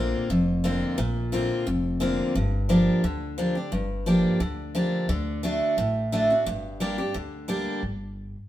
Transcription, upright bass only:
Already playing: A#1
0.30 F1
0.98 A#1
1.67 F1
2.35 G1
3.04 D2
3.72 G1
4.40 D2
5.09 D2
5.77 A1
6.46 G1
7.15 D2
7.83 G1

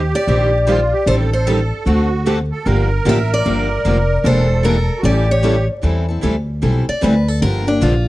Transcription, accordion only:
Already playing: G4
0.67 F4
0.92 G4
1.06 A4
1.86 F#4
2.25 G4
2.52 A4
2.65 A#4
4.24 A4
4.99 F#4
5.04 G4

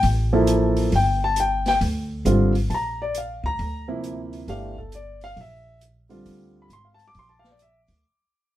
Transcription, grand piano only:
0.33 F3 A#3 E4 A4
0.95 G5
1.24 A5
1.40 G5
1.68 G5
2.25 D3 G3 C4 F4
2.70 A5
2.74 A#5
3.02 D5
3.18 F5
3.46 A#5
3.88 C3 F3 A#3 E4
4.48 E3 A3 D4 G4 F5
4.79 A4
4.95 D5
5.24 F5
5.41 E5
6.09 D3 G3 C4 F4
6.62 B5
6.73 C6
6.85 F5
6.94 A5
7.08 D6
7.19 C6
7.29 A5
7.39 F5
7.51 D5
7.62 E5

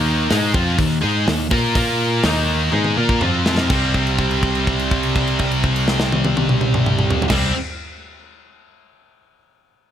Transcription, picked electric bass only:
Already playing: D#2
0.31 G#2
0.54 F2
0.79 D#2
1.04 G#2
1.28 D#2
1.52 A#2
1.76 A#2
2.24 D#2
2.73 G#2
2.98 A#2
3.22 F2
3.70 C2
7.30 C2

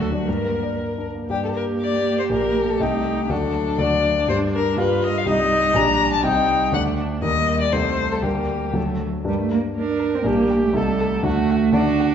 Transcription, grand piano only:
Already playing: D2 F#3
0.12 D4 D5
0.29 G2
0.45 A#3
0.63 D5
0.80 A#4
0.98 D4
1.15 A#3
1.30 G2 A#3 G4 D5
2.29 A#1 A#3 G4 D5
2.80 C2 A3 A4 D#5
3.29 D2 A3 F#4 D5
3.78 D2 A3 F#4 D5
4.28 G2 G3 G4 D5
4.77 G2 G3 G4 F5
5.26 C2 G3 G4 D#5
5.74 A#1 G3 G4 D5
6.23 C2 C4 G4 D#5
6.72 D2 A3 D4 D5
7.22 D#2 G3 D#4 A#4
7.72 C2 G3 D#4 A4
8.23 D2 G3 D4 A#4
8.73 D2 F#3 D4 A4
9.25 G2 G3 D4 A#4
10.24 A#1 G3 D4 A#4
10.73 C2 A3 D#4 A4
11.23 D2 A3 D4 F#4
11.72 D2 A3 D4 F#4

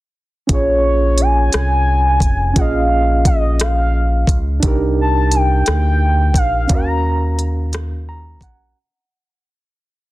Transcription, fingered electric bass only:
0.50 A#1
1.54 C2
2.21 F1
2.57 A#1
4.28 C#2
4.64 C2
5.68 D2
6.35 A#1
6.70 D#2
8.41 A#1

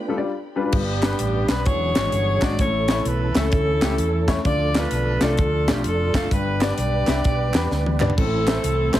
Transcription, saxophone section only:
0.73 B3 D4 G4
1.49 B4
1.66 F#4 G#4 C#5
2.43 D5
2.60 E4 A4 C#5
3.07 B4
3.36 C#4 E4 A4
4.45 F4 A4 D5
4.76 D4 F4 B4
5.22 D4 F4 A4
5.69 G4
5.86 A4
6.15 A4
6.32 D4 G4 B4
6.62 G4 B4 D5
8.17 C4 E4 A4
8.93 C5

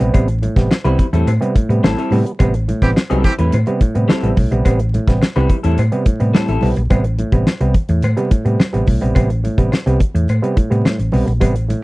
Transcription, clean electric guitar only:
0.85 G3 C4 E4 B4
1.13 G3 C4 E4 A4
1.83 G3 C4 E4 A4
1.97 G3 C4 E4 A4
3.10 G3 C4 E4 A4
3.38 G3 C4 E4 B4
4.08 G3 C4 E4 A4
5.36 G3 C4 E4 B4
5.63 G3 C4 E4 A4
6.34 G3 C4 E4 A4
6.49 G3 C4 E4 A4

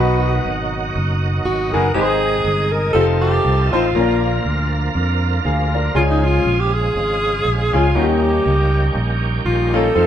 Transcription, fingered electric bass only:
Already playing: B1
0.46 G#1
0.95 F#1
1.45 G#1
1.73 F#1
1.95 G#1
2.44 G1
2.95 F1
3.45 C2
3.73 A1
3.95 A#1
4.45 D2
4.95 F2
5.45 D2
5.95 C#2
6.45 A#1
6.95 G#1
7.45 A#1
7.74 C#2
7.95 D#2
8.46 C#2
8.95 A#1
9.45 A#1
9.96 F2

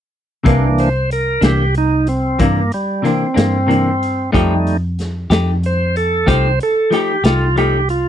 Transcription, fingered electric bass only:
0.46 C2
1.42 C2
2.39 G2
3.37 G2
4.34 F2
5.30 F2
6.28 C2
7.24 C2

